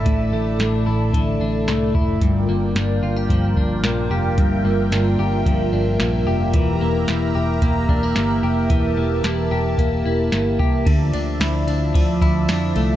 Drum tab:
RD |--------|--------|--------|--------|
HH |x-x-x-x-|x-x-x-x-|x-x-x-x-|x-x-x-x-|
TB |--------|--------|--------|--------|
SD |--o---o-|--o---o-|--o---o-|--o---o-|
BD |o---o--o|o---oo--|o---o---|o---oo--|

RD |--------|xxxxxxxx|
HH |x-x-x-x-|--------|
TB |--------|--x---x-|
SD |--o---o-|--o---o-|
BD |o---o--o|o---oo--|